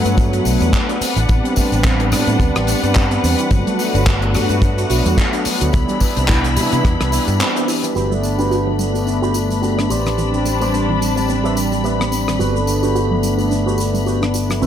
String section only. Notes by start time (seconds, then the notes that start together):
Already playing: F#3 B4 F#5
1.01 D4
3.51 F#4
5.73 E4 B5
7.96 B5
9.90 D4
14.63 E4 B5